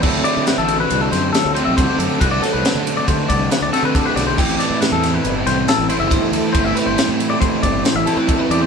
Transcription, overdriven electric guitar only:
X:1
M:5/4
L:1/8
Q:1/4=138
K:Dmix
V:1 name="Overdriven electric guitar"
[D,A,CF]6- [D,A,CF] [D,A,CF]3 | [D,A,CF]6- [D,A,CF] [D,A,CF]3 | [A,,E,A,CE]6- [A,,E,A,CE] [A,,E,A,CE]3 | [A,,E,A,CE]6- [A,,E,A,CE] [A,,E,A,CE]3 |]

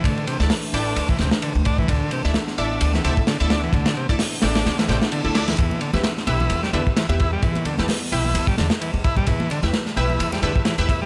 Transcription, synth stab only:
X:1
M:4/4
L:1/16
Q:"Swing 16ths" 1/4=130
K:Em
V:1 name="Synth stab"
z3 [EAda] z2 [EAdg]2 z8 | z3 [EAde] z2 [EAde]4 [EAde]2 z [EAde] z2 | z3 [EAda] z2 [EAdg]2 z2 [EAdg]2 z [EAde] [EAde] z | z3 [EGBe] z2 [EGBe]4 [EGBe]2 z [EGBe] z2 |
z3 [EGBa] z2 [EGBg]2 z8 | z3 [EGBe] z2 [EGBe]4 [EGBe]2 z [EGBe] z2 |]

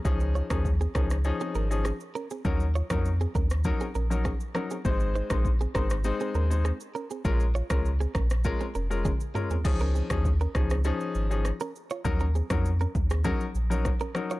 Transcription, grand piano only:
X:1
M:4/4
L:1/16
Q:1/4=100
K:Db
V:1 name="Grand piano"
[F,DEA]3 [F,DEA] z2 [F,DEA] z [F,DEA]3 [F,DEA] z4 | [G,DEB] z2 [G,DEB] z4 [G,DEB] z2 [G,DEB] z2 [G,DEB] z | [A,CEc]3 [A,CEc] z2 [A,CEc] z [A,CEc]3 [A,CEc] z4 | [A,DFB] z2 [A,DFB] z4 [A,DFB] z2 [A,DFB] z2 [A,DFB] z |
[F,DEA]3 [F,DEA] z2 [F,DEA] z [F,DEA]3 [F,DEA] z4 | [G,DEB] z2 [G,DEB] z4 [G,DEB] z2 [G,DEB] z2 [G,DEB] z |]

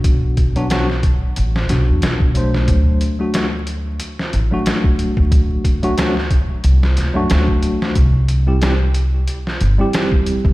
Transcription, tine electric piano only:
X:1
M:4/4
L:1/16
Q:"Swing 16ths" 1/4=91
K:Dphr
V:1 name="Tine electric piano"
[^F,=B,D^F]3 [F,B,DF] [F,B,DF] z4 z [F,B,DF]4 [F,A,Dc]2- | [^F,A,Dc]3 [F,A,D^F] [F,A,DF] z6 [F,A,DF]4- [F,A,DF]- | [^F,A,D^F]3 [F,A,DF] [F,A,DF] z6 [F,A,DF]4- [F,A,DF] | z3 [G,C=EG] [G,CEG] z6 [G,CEG]4- [G,CEG] |]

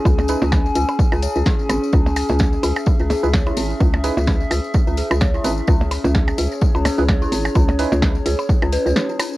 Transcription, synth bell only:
X:1
M:4/4
L:1/16
Q:"Swing 16ths" 1/4=128
K:C#m
V:1 name="Synth bell"
C z2 C z2 G z2 C c z E z G z | C z2 C z2 G z2 C G z c E C z | C z2 C z2 G z2 C G z c E C z | C z2 C z2 G z2 C G z c E C z |
C z2 C z2 G z2 C B B D C C z |]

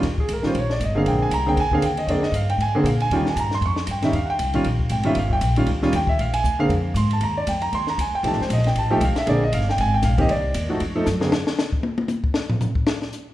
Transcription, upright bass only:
X:1
M:4/4
L:1/8
Q:"Swing" 1/4=234
K:Bbmix
V:1 name="Upright bass" clef=bass
E,,2 _D,, z B,,,2 G,,,2 | B,,,2 C,,2 D,, z E,,2 | F,, z G,,2 A,,2 B,,2 | E,,2 G,,2 F,,2 G,,2 |
E,,2 C,,2 B,,,2 A,,,2 | G,,,2 B,,,2 _D,,2 E,,2 | B,,,2 D,,2 F,,2 A,,2 | E,,2 F,,2 E,,2 D,, z |
(3C,, =A,,, F,,, B,,,2 A,,,2 C,, z | B,,,2 G,,,2 A,,,2 B,,,2 | C,,2 E,,2 F,,2 _G,,2 | z8 |
z8 |]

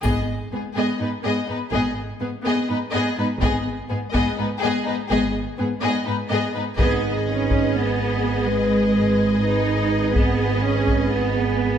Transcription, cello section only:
X:1
M:7/8
L:1/8
Q:1/4=125
K:G#m
V:1 name="Cello section" clef=bass
G,, z G,, G,, G,, G,, G,, | G,, z G,, G,, G,, G,, G,, | G,, z G,, G,, G,, G,, G,, | G,, z G,, G,, G,, G,, G,, |
B,2 C2 B,3 | G,4 D3 | B,2 C2 B,3 |]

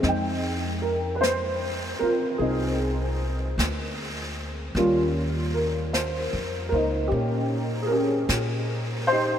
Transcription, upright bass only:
X:1
M:4/4
L:1/8
Q:"Swing" 1/4=51
K:Fm
V:1 name="Upright bass" clef=bass
F,,3 z C,,2 =D,,2 | E,,2- (3E,, F,, D,, B,,2 B,,2 |]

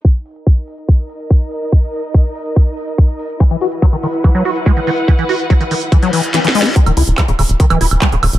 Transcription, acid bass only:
X:1
M:4/4
L:1/16
Q:1/4=143
K:none
V:1 name="Acid bass" clef=bass
z16 | z16 | E, E, _G z _G, _E, E, z =E, G, G z _A, _E, E, z | E, E, _G z _G, _E, E, z =E, G, E, z E, E, _A, E |
_E, E, _F z _F, _D, D, z E, F, F z G, D, D, z |]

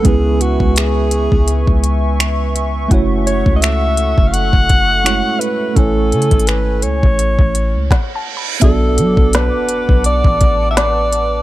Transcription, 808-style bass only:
X:1
M:4/4
L:1/16
Q:"Swing 16ths" 1/4=84
K:Bdor
V:1 name="808-style bass" clef=bass
C,,3 C,,4 C,,2 C,,6- C,, | F,,,3 C,,4 F,,,2 F,,,4 z3 | A,,,2 C, G,,,3 C,, A,,,2 A,,,2 C,, z4 | B,,,2 F, B,,,2 z2 B,,,2 A,,,6- A,,, |]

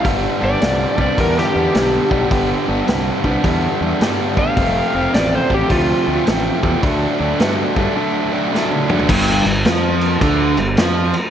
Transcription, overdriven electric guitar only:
X:1
M:4/4
L:1/8
Q:"Swing" 1/4=106
K:Gmix
V:1 name="Overdriven electric guitar" clef=bass
[G,,D,G,B,D] [G,,D,G,B,D] [G,,D,G,B,D] [G,,D,G,B,D] [G,,D,G,B,D] [G,,D,G,B,D] [G,,D,G,B,D] [G,,D,G,B,D] | [G,,D,G,B,D] [G,,D,G,B,D] [G,,D,G,B,D] [G,,D,G,B,D] [G,,D,G,B,D] [G,,D,G,B,D] [G,,D,G,B,D] [G,,D,G,B,D] | [F,,C,F,A,C] [F,,C,F,A,C] [F,,C,F,A,C] [F,,C,F,A,C] [F,,C,F,A,C] [F,,C,F,A,C] [F,,C,F,A,C] [F,,C,F,A,C] | [D,^F,A,D] [D,F,A,D] [D,F,A,D] [D,F,A,D] [D,F,A,D] [D,F,A,D] [D,F,A,D] [D,F,A,D] |
G,, G,, F,2 D, G,, F, z |]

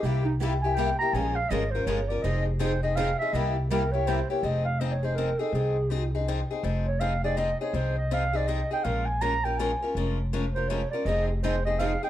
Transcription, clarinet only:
X:1
M:3/4
L:1/8
Q:"Swing" 1/4=163
K:Fm
V:1 name="Clarinet"
G E z a g b | a f e c d =d | e G c e f =e | e G B d c d |
e f (3e d c B =A | A4 z2 | z d f =d e _d | c e f =d e g |
f a b g a2 | z3 c d =d | e G c e f g |]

